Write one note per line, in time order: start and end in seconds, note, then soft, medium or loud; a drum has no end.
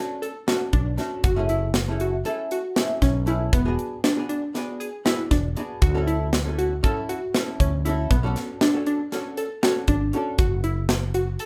0.00 0.29 A3 medium
0.00 0.29 C#4 medium
0.00 0.29 D4 medium
0.00 0.29 F#4 medium
0.22 0.39 A4 medium
0.22 closed hi-hat medium
0.48 0.80 A3 medium
0.48 0.80 C#4 medium
0.48 0.80 D4 medium
0.48 0.65 F#4 medium
0.48 0.80 F#4 medium
0.48 snare medium
0.48 closed hi-hat medium
0.73 0.97 B1 medium
0.73 1.08 D4 medium
0.73 kick medium
0.73 closed hi-hat medium
0.97 1.22 A3 medium
0.97 1.22 C#4 medium
0.97 1.22 D4 medium
0.97 1.23 F#4 medium
0.97 snare soft
0.97 closed hi-hat soft
1.24 2.22 F#1 medium
1.24 1.41 F#4 medium
1.24 kick loud
1.24 closed hi-hat medium
1.36 1.69 A3 medium
1.36 1.69 C#4 medium
1.36 1.69 E4 medium
1.36 1.69 G#4 medium
1.49 1.84 E4 medium
1.49 closed hi-hat soft
1.74 snare medium
1.74 closed hi-hat medium
1.88 2.12 A3 medium
1.88 2.12 C#4 medium
1.88 2.12 E4 medium
1.88 2.12 G#4 medium
2.00 2.18 F#4 medium
2.00 closed hi-hat medium
2.25 2.58 A3 medium
2.25 2.58 C#4 medium
2.25 2.58 E4 medium
2.25 2.58 G#4 medium
2.25 2.43 A4 medium
2.25 closed hi-hat medium
2.51 2.86 F#4 medium
2.51 closed hi-hat medium
2.76 3.09 A3 medium
2.76 3.09 C#4 medium
2.76 3.09 E4 medium
2.76 3.09 G#4 medium
2.76 snare loud
2.76 closed hi-hat medium
3.02 3.49 B1 medium
3.02 3.19 C#4 medium
3.02 kick medium
3.02 snare soft
3.02 closed hi-hat medium
3.26 3.51 A3 medium
3.26 3.51 C#4 medium
3.26 3.51 E4 medium
3.26 3.45 E4 medium
3.26 3.52 G#4 medium
3.26 closed hi-hat medium
3.53 3.76 E1 medium
3.53 3.88 B3 medium
3.53 kick loud
3.53 closed hi-hat medium
3.65 3.98 B3 medium
3.65 3.98 D4 medium
3.65 3.98 F#4 medium
3.65 3.98 G#4 medium
3.79 closed hi-hat soft
4.04 4.21 D4 medium
4.04 snare medium
4.04 closed hi-hat medium
4.16 4.40 B3 medium
4.16 4.41 D4 medium
4.16 4.41 F#4 medium
4.16 4.41 G#4 medium
4.29 4.64 D4 medium
4.29 closed hi-hat medium
4.54 4.87 B3 medium
4.54 4.87 D4 medium
4.54 4.87 F#4 medium
4.54 4.87 G#4 medium
4.54 snare soft
4.54 closed hi-hat medium
4.80 4.97 G#4 medium
4.80 closed hi-hat medium
5.05 5.37 B3 medium
5.05 5.37 D4 medium
5.05 5.23 E4 medium
5.05 5.38 F#4 medium
5.05 5.38 G#4 medium
5.05 snare loud
5.05 closed hi-hat medium
5.31 5.54 E1 medium
5.31 5.66 D4 medium
5.31 kick medium
5.31 snare soft
5.31 closed hi-hat medium
5.57 5.81 B3 medium
5.57 5.81 D4 medium
5.57 5.81 F#4 medium
5.57 5.81 G#4 medium
5.57 closed hi-hat medium
5.82 6.80 D2 medium
5.82 5.99 F#4 medium
5.82 kick loud
5.82 closed hi-hat medium
5.94 6.27 C#4 medium
5.94 6.27 E4 medium
5.94 6.27 F#4 medium
5.94 6.27 A4 loud
6.07 6.42 E4 medium
6.07 closed hi-hat soft
6.33 snare medium
6.33 closed hi-hat medium
6.45 6.70 C#4 medium
6.45 6.70 E4 medium
6.45 6.70 F#4 medium
6.45 6.70 A4 medium
6.58 6.76 F#4 medium
6.58 closed hi-hat medium
6.83 7.15 C#4 medium
6.83 7.16 E4 medium
6.83 7.16 F#4 medium
6.83 7.01 A4 medium
6.83 7.16 A4 medium
6.83 kick medium
6.83 closed hi-hat medium
7.09 7.44 F#4 medium
7.09 closed hi-hat medium
7.34 7.66 C#4 medium
7.34 7.67 E4 medium
7.34 7.67 F#4 medium
7.34 7.67 A4 medium
7.34 snare loud
7.34 closed hi-hat medium
7.60 8.07 D2 medium
7.60 7.77 C#4 medium
7.60 kick medium
7.60 closed hi-hat medium
7.85 8.10 C#4 medium
7.85 8.02 E4 medium
7.85 8.10 E4 medium
7.85 8.10 F#4 medium
7.85 8.10 A4 medium
7.85 closed hi-hat medium
8.10 8.34 B1 medium
8.10 8.45 B3 medium
8.10 kick medium
8.10 closed hi-hat medium
8.23 8.55 C#4 medium
8.23 8.55 D4 medium
8.23 8.56 F#4 medium
8.23 8.56 A4 medium
8.36 snare soft
8.36 closed hi-hat soft
8.61 8.79 D4 medium
8.61 snare loud
8.61 closed hi-hat medium
8.74 8.98 C#4 medium
8.74 8.98 D4 medium
8.74 8.98 F#4 medium
8.74 8.98 A4 medium
8.86 9.21 D4 medium
8.86 closed hi-hat medium
9.12 9.44 C#4 medium
9.12 9.44 D4 medium
9.12 9.44 F#4 medium
9.12 9.44 A4 medium
9.12 snare soft
9.12 closed hi-hat medium
9.37 9.55 A4 medium
9.37 closed hi-hat medium
9.63 9.95 C#4 medium
9.63 9.95 D4 medium
9.63 9.80 F#4 medium
9.63 9.95 F#4 medium
9.63 9.95 A4 medium
9.63 snare loud
9.63 closed hi-hat medium
9.88 10.11 G#1 medium
9.88 10.23 D4 medium
9.88 kick medium
9.88 closed hi-hat medium
10.13 10.38 C#4 medium
10.13 10.38 D4 medium
10.13 10.38 F#4 medium
10.13 10.38 A4 medium
10.13 closed hi-hat medium
10.38 11.36 F#1 medium
10.38 10.56 F#4 medium
10.38 kick loud
10.38 closed hi-hat medium
10.64 10.98 E4 medium
10.64 closed hi-hat medium
10.89 snare loud
10.89 closed hi-hat medium
11.14 11.32 F#4 medium
11.14 closed hi-hat medium
11.39 11.46 A4 medium
11.39 closed hi-hat medium